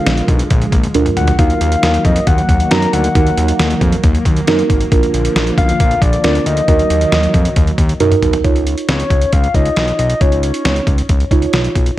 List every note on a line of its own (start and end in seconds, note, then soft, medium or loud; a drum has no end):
0.00 1.35 D3 medium
0.00 1.35 F3 medium
0.00 1.37 G#3 medium
0.00 0.36 D4 medium
0.00 0.36 F4 medium
0.00 0.36 A#4 medium
0.00 0.25 F5 loud
0.06 0.22 A#1 loud
0.06 snare loud
0.06 closed hi-hat medium
0.18 closed hi-hat medium
0.28 0.44 B1 loud
0.28 kick loud
0.28 closed hi-hat medium
0.39 closed hi-hat medium
0.50 0.66 A#1 loud
0.50 kick loud
0.50 closed hi-hat medium
0.62 closed hi-hat soft
0.72 0.88 A#1 loud
0.72 kick medium
0.72 closed hi-hat medium
0.83 closed hi-hat medium
0.94 1.10 D2 medium
0.94 1.32 D4 medium
0.94 1.32 F4 medium
0.94 1.32 A#4 loud
0.94 closed hi-hat medium
0.94 high tom medium
1.06 closed hi-hat medium
1.06 mid tom medium
1.17 1.32 D2 loud
1.17 1.40 F#5 medium
1.17 closed hi-hat medium
1.17 mid tom medium
1.27 closed hi-hat medium
1.27 floor tom medium
1.39 1.54 D#2 loud
1.39 4.88 D#3 medium
1.39 4.88 F#3 medium
1.39 8.41 A#3 medium
1.39 2.13 D#4 medium
1.39 2.13 F#4 medium
1.39 2.13 A#4 medium
1.39 2.06 F5 loud
1.39 kick loud
1.39 closed hi-hat medium
1.50 closed hi-hat medium
1.61 1.76 D#2 loud
1.61 closed hi-hat medium
1.72 closed hi-hat medium
1.83 1.98 D#2 loud
1.83 snare loud
1.83 closed hi-hat medium
1.94 closed hi-hat medium
2.05 2.20 F2 loud
2.05 2.28 D#5 medium
2.05 kick loud
2.05 closed hi-hat medium
2.16 closed hi-hat medium
2.27 2.43 D#2 loud
2.27 2.72 F#5 loud
2.27 kick loud
2.27 closed hi-hat medium
2.38 closed hi-hat soft
2.49 2.64 D#2 loud
2.49 kick medium
2.49 closed hi-hat medium
2.60 closed hi-hat medium
2.71 2.87 F#2 loud
2.71 3.08 D#4 medium
2.71 3.08 F#4 medium
2.71 3.08 A#4 medium
2.71 2.92 A#5 loud
2.71 snare loud
2.71 closed hi-hat medium
2.82 closed hi-hat medium
2.93 3.09 D2 loud
2.93 3.77 F#5 loud
2.93 closed hi-hat medium
3.04 closed hi-hat medium
3.15 3.31 D#2 loud
3.15 3.89 D#4 medium
3.15 3.89 F#4 medium
3.15 3.89 A#4 medium
3.15 kick loud
3.15 closed hi-hat medium
3.27 closed hi-hat medium
3.37 3.53 D#2 loud
3.37 closed hi-hat medium
3.48 closed hi-hat medium
3.59 3.75 D#2 loud
3.59 snare loud
3.59 closed hi-hat medium
3.70 closed hi-hat medium
3.81 3.97 F2 loud
3.81 kick loud
3.81 closed hi-hat medium
3.92 closed hi-hat medium
4.03 4.19 D#2 loud
4.03 kick loud
4.03 closed hi-hat medium
4.15 closed hi-hat soft
4.25 4.41 D#2 loud
4.25 kick medium
4.25 closed hi-hat medium
4.37 closed hi-hat medium
4.47 4.63 F#2 medium
4.47 4.85 D#4 medium
4.47 4.85 F#4 medium
4.47 4.85 A#4 loud
4.47 snare loud
4.47 closed hi-hat medium
4.59 closed hi-hat medium
4.70 4.85 G#1 medium
4.70 kick medium
4.70 closed hi-hat medium
4.81 closed hi-hat medium
4.92 5.07 A#1 loud
4.92 6.66 D3 medium
4.92 6.66 F3 medium
4.92 5.66 D4 medium
4.92 5.66 F4 medium
4.92 5.66 A#4 loud
4.92 kick loud
4.92 closed hi-hat medium
5.03 closed hi-hat medium
5.14 5.29 A#1 loud
5.14 closed hi-hat medium
5.25 closed hi-hat medium
5.36 5.51 A#1 loud
5.36 snare loud
5.36 closed hi-hat medium
5.47 closed hi-hat medium
5.58 5.73 B1 loud
5.58 6.03 F5 loud
5.58 kick loud
5.58 closed hi-hat medium
5.69 closed hi-hat medium
5.80 5.96 A#1 loud
5.80 kick loud
5.80 closed hi-hat medium
5.91 closed hi-hat soft
6.02 6.17 A#1 loud
6.02 6.23 D5 loud
6.02 kick medium
6.02 closed hi-hat medium
6.13 closed hi-hat medium
6.24 6.39 D2 medium
6.24 6.61 D4 medium
6.24 6.61 F4 medium
6.24 6.61 A#4 medium
6.24 6.48 D5 loud
6.24 snare loud
6.24 closed hi-hat medium
6.35 closed hi-hat medium
6.46 6.62 D2 medium
6.46 8.00 D#5 loud
6.46 closed hi-hat medium
6.57 closed hi-hat medium
6.68 6.84 D#2 loud
6.68 8.43 D#3 medium
6.68 8.43 F#3 medium
6.68 7.42 D#4 medium
6.68 7.42 F#4 medium
6.68 7.42 A#4 medium
6.68 kick loud
6.68 closed hi-hat medium
6.79 closed hi-hat medium
6.90 7.06 D#2 medium
6.90 closed hi-hat medium
7.01 closed hi-hat medium
7.12 7.28 D#2 loud
7.12 snare loud
7.12 closed hi-hat medium
7.23 closed hi-hat medium
7.34 7.50 F2 loud
7.34 kick loud
7.34 closed hi-hat medium
7.45 closed hi-hat medium
7.56 7.72 D#2 loud
7.56 kick loud
7.56 closed hi-hat medium
7.67 closed hi-hat soft
7.78 7.94 D#2 loud
7.78 kick medium
7.78 closed hi-hat medium
7.89 closed hi-hat medium
8.00 8.16 F#2 loud
8.00 8.37 D#4 medium
8.00 8.37 F#4 medium
8.00 8.37 A#4 loud
8.00 closed hi-hat medium
8.00 high tom medium
8.12 closed hi-hat medium
8.12 mid tom medium
8.23 8.38 B1 loud
8.23 closed hi-hat medium
8.23 mid tom medium
8.33 closed hi-hat medium
8.33 floor tom medium
8.44 8.75 C#2 loud
8.44 9.18 D#4 medium
8.44 9.18 F4 medium
8.44 9.18 C#5 medium
8.44 kick loud
8.44 closed hi-hat medium
8.56 closed hi-hat soft
8.67 closed hi-hat medium
8.78 closed hi-hat medium
8.89 9.04 C#2 loud
8.89 9.34 C#5 loud
8.89 snare loud
8.89 closed hi-hat medium
9.00 closed hi-hat medium
9.10 9.26 C#2 loud
9.10 kick medium
9.10 closed hi-hat medium
9.22 closed hi-hat medium
9.33 9.48 C#2 loud
9.33 9.56 F5 loud
9.33 kick medium
9.33 closed hi-hat medium
9.44 closed hi-hat soft
9.54 9.70 C#2 medium
9.54 10.10 D#4 medium
9.54 10.10 F4 medium
9.54 10.10 C#5 medium
9.54 9.98 D#5 loud
9.54 kick medium
9.54 closed hi-hat medium
9.66 closed hi-hat medium
9.76 9.92 B1 medium
9.76 snare loud
9.76 closed hi-hat medium
9.88 closed hi-hat medium
9.99 10.14 B1 medium
9.99 10.23 D#5 loud
9.99 closed hi-hat medium
10.10 closed hi-hat medium
10.21 10.52 C#2 loud
10.21 10.95 D#4 medium
10.21 10.95 F4 medium
10.21 10.95 C#5 medium
10.21 11.53 C#5 loud
10.21 kick loud
10.21 closed hi-hat medium
10.32 closed hi-hat medium
10.43 closed hi-hat medium
10.54 closed hi-hat medium
10.65 10.81 C#2 loud
10.65 snare loud
10.65 closed hi-hat medium
10.76 closed hi-hat medium
10.87 11.02 C#2 loud
10.87 kick loud
10.87 closed hi-hat medium
10.98 closed hi-hat medium
11.09 11.25 C#2 loud
11.09 kick medium
11.09 closed hi-hat medium
11.20 closed hi-hat soft
11.31 11.47 C#2 loud
11.31 11.87 D#4 medium
11.31 11.87 F4 medium
11.31 11.87 C#5 medium
11.31 kick medium
11.31 closed hi-hat medium
11.42 closed hi-hat medium
11.53 11.69 B1 medium
11.53 snare loud
11.53 closed hi-hat medium
11.65 closed hi-hat medium
11.75 11.91 B1 medium
11.75 kick medium
11.75 closed hi-hat medium
11.86 closed hi-hat medium